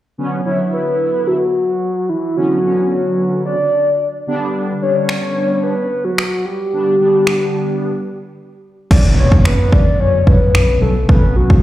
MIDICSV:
0, 0, Header, 1, 6, 480
1, 0, Start_track
1, 0, Key_signature, 2, "minor"
1, 0, Tempo, 545455
1, 159, Time_signature, 4, 2, 24, 8
1, 10231, End_track
2, 0, Start_track
2, 0, Title_t, "Soft synth lead"
2, 0, Program_c, 0, 80
2, 399, Note_on_c, 0, 73, 88
2, 507, Note_off_c, 0, 73, 0
2, 640, Note_on_c, 0, 71, 96
2, 1120, Note_on_c, 0, 66, 86
2, 1134, Note_off_c, 0, 71, 0
2, 1355, Note_off_c, 0, 66, 0
2, 1360, Note_on_c, 0, 66, 97
2, 1841, Note_on_c, 0, 64, 86
2, 1854, Note_off_c, 0, 66, 0
2, 2080, Note_on_c, 0, 66, 101
2, 2094, Note_off_c, 0, 64, 0
2, 2556, Note_off_c, 0, 66, 0
2, 2561, Note_on_c, 0, 66, 94
2, 3007, Note_off_c, 0, 66, 0
2, 3042, Note_on_c, 0, 74, 103
2, 3726, Note_off_c, 0, 74, 0
2, 4240, Note_on_c, 0, 73, 115
2, 4957, Note_on_c, 0, 71, 101
2, 4970, Note_off_c, 0, 73, 0
2, 5319, Note_on_c, 0, 66, 89
2, 5333, Note_off_c, 0, 71, 0
2, 5679, Note_on_c, 0, 67, 97
2, 5692, Note_off_c, 0, 66, 0
2, 7599, Note_off_c, 0, 67, 0
2, 7840, Note_on_c, 0, 74, 105
2, 7948, Note_off_c, 0, 74, 0
2, 8078, Note_on_c, 0, 73, 100
2, 8187, Note_off_c, 0, 73, 0
2, 8320, Note_on_c, 0, 71, 103
2, 8543, Note_off_c, 0, 71, 0
2, 8560, Note_on_c, 0, 74, 106
2, 8783, Note_off_c, 0, 74, 0
2, 8802, Note_on_c, 0, 73, 99
2, 9040, Note_on_c, 0, 71, 110
2, 9053, Note_off_c, 0, 73, 0
2, 9514, Note_off_c, 0, 71, 0
2, 9519, Note_on_c, 0, 69, 91
2, 9742, Note_off_c, 0, 69, 0
2, 9759, Note_on_c, 0, 71, 104
2, 10000, Note_on_c, 0, 66, 88
2, 10013, Note_off_c, 0, 71, 0
2, 10231, Note_off_c, 0, 66, 0
2, 10231, End_track
3, 0, Start_track
3, 0, Title_t, "Analog polysynth"
3, 0, Program_c, 1, 90
3, 157, Note_on_c, 1, 50, 85
3, 159, Note_on_c, 1, 54, 76
3, 160, Note_on_c, 1, 59, 77
3, 161, Note_on_c, 1, 61, 90
3, 359, Note_off_c, 1, 50, 0
3, 360, Note_off_c, 1, 54, 0
3, 361, Note_off_c, 1, 59, 0
3, 361, Note_off_c, 1, 61, 0
3, 397, Note_on_c, 1, 50, 76
3, 398, Note_on_c, 1, 54, 69
3, 400, Note_on_c, 1, 59, 67
3, 401, Note_on_c, 1, 64, 84
3, 1202, Note_off_c, 1, 50, 0
3, 1203, Note_off_c, 1, 54, 0
3, 1204, Note_off_c, 1, 59, 0
3, 1204, Note_off_c, 1, 64, 0
3, 2078, Note_on_c, 1, 50, 72
3, 2080, Note_on_c, 1, 54, 67
3, 2081, Note_on_c, 1, 59, 66
3, 2082, Note_on_c, 1, 61, 82
3, 2280, Note_off_c, 1, 50, 0
3, 2281, Note_off_c, 1, 54, 0
3, 2281, Note_off_c, 1, 59, 0
3, 2282, Note_off_c, 1, 61, 0
3, 2317, Note_on_c, 1, 50, 74
3, 2318, Note_on_c, 1, 54, 66
3, 2320, Note_on_c, 1, 59, 69
3, 2321, Note_on_c, 1, 61, 79
3, 3123, Note_off_c, 1, 50, 0
3, 3123, Note_off_c, 1, 54, 0
3, 3124, Note_off_c, 1, 59, 0
3, 3124, Note_off_c, 1, 61, 0
3, 3756, Note_on_c, 1, 50, 91
3, 3758, Note_on_c, 1, 55, 87
3, 3759, Note_on_c, 1, 59, 84
3, 3761, Note_on_c, 1, 62, 104
3, 4160, Note_off_c, 1, 50, 0
3, 4161, Note_off_c, 1, 55, 0
3, 4161, Note_off_c, 1, 59, 0
3, 4162, Note_off_c, 1, 62, 0
3, 4237, Note_on_c, 1, 50, 74
3, 4238, Note_on_c, 1, 55, 72
3, 4240, Note_on_c, 1, 59, 71
3, 4241, Note_on_c, 1, 62, 84
3, 5042, Note_off_c, 1, 50, 0
3, 5043, Note_off_c, 1, 55, 0
3, 5044, Note_off_c, 1, 59, 0
3, 5045, Note_off_c, 1, 62, 0
3, 5916, Note_on_c, 1, 50, 73
3, 5918, Note_on_c, 1, 55, 68
3, 5919, Note_on_c, 1, 59, 69
3, 5921, Note_on_c, 1, 62, 81
3, 6119, Note_off_c, 1, 50, 0
3, 6120, Note_off_c, 1, 55, 0
3, 6120, Note_off_c, 1, 59, 0
3, 6121, Note_off_c, 1, 62, 0
3, 6156, Note_on_c, 1, 50, 78
3, 6158, Note_on_c, 1, 55, 70
3, 6158, Note_on_c, 1, 59, 73
3, 6160, Note_on_c, 1, 62, 80
3, 6962, Note_off_c, 1, 50, 0
3, 6963, Note_off_c, 1, 55, 0
3, 6963, Note_off_c, 1, 59, 0
3, 6964, Note_off_c, 1, 62, 0
3, 7836, Note_on_c, 1, 50, 76
3, 7838, Note_on_c, 1, 54, 70
3, 7839, Note_on_c, 1, 59, 66
3, 7841, Note_on_c, 1, 61, 79
3, 8642, Note_off_c, 1, 50, 0
3, 8643, Note_off_c, 1, 54, 0
3, 8643, Note_off_c, 1, 59, 0
3, 8644, Note_off_c, 1, 61, 0
3, 8796, Note_on_c, 1, 50, 73
3, 8797, Note_on_c, 1, 54, 67
3, 8799, Note_on_c, 1, 59, 67
3, 8800, Note_on_c, 1, 61, 79
3, 8999, Note_off_c, 1, 50, 0
3, 8999, Note_off_c, 1, 54, 0
3, 9000, Note_off_c, 1, 59, 0
3, 9001, Note_off_c, 1, 61, 0
3, 9036, Note_on_c, 1, 50, 66
3, 9038, Note_on_c, 1, 54, 62
3, 9040, Note_on_c, 1, 59, 63
3, 9041, Note_on_c, 1, 61, 75
3, 9641, Note_off_c, 1, 50, 0
3, 9642, Note_off_c, 1, 54, 0
3, 9643, Note_off_c, 1, 59, 0
3, 9643, Note_off_c, 1, 61, 0
3, 9757, Note_on_c, 1, 50, 74
3, 9758, Note_on_c, 1, 54, 70
3, 9760, Note_on_c, 1, 59, 71
3, 9762, Note_on_c, 1, 61, 83
3, 10231, Note_off_c, 1, 50, 0
3, 10231, Note_off_c, 1, 54, 0
3, 10231, Note_off_c, 1, 59, 0
3, 10231, Note_off_c, 1, 61, 0
3, 10231, End_track
4, 0, Start_track
4, 0, Title_t, "FM bass"
4, 0, Program_c, 2, 39
4, 7839, Note_on_c, 2, 35, 91
4, 8141, Note_off_c, 2, 35, 0
4, 8199, Note_on_c, 2, 42, 89
4, 8905, Note_off_c, 2, 42, 0
4, 9038, Note_on_c, 2, 42, 96
4, 9240, Note_off_c, 2, 42, 0
4, 9280, Note_on_c, 2, 35, 90
4, 9481, Note_off_c, 2, 35, 0
4, 9520, Note_on_c, 2, 35, 89
4, 9721, Note_off_c, 2, 35, 0
4, 9759, Note_on_c, 2, 35, 93
4, 10062, Note_off_c, 2, 35, 0
4, 10119, Note_on_c, 2, 42, 91
4, 10231, Note_off_c, 2, 42, 0
4, 10231, End_track
5, 0, Start_track
5, 0, Title_t, "Impact"
5, 0, Program_c, 3, 103
5, 7839, Note_on_c, 3, 60, 82
5, 9759, Note_off_c, 3, 60, 0
5, 10231, End_track
6, 0, Start_track
6, 0, Title_t, "Drums"
6, 4479, Note_on_c, 9, 26, 95
6, 4567, Note_off_c, 9, 26, 0
6, 5441, Note_on_c, 9, 26, 108
6, 5529, Note_off_c, 9, 26, 0
6, 6398, Note_on_c, 9, 26, 94
6, 6486, Note_off_c, 9, 26, 0
6, 7839, Note_on_c, 9, 36, 99
6, 7839, Note_on_c, 9, 49, 82
6, 7927, Note_off_c, 9, 36, 0
6, 7927, Note_off_c, 9, 49, 0
6, 8199, Note_on_c, 9, 36, 86
6, 8287, Note_off_c, 9, 36, 0
6, 8319, Note_on_c, 9, 26, 97
6, 8407, Note_off_c, 9, 26, 0
6, 8558, Note_on_c, 9, 36, 89
6, 8646, Note_off_c, 9, 36, 0
6, 9038, Note_on_c, 9, 36, 83
6, 9126, Note_off_c, 9, 36, 0
6, 9282, Note_on_c, 9, 26, 118
6, 9370, Note_off_c, 9, 26, 0
6, 9759, Note_on_c, 9, 36, 106
6, 9847, Note_off_c, 9, 36, 0
6, 10120, Note_on_c, 9, 36, 85
6, 10208, Note_off_c, 9, 36, 0
6, 10231, End_track
0, 0, End_of_file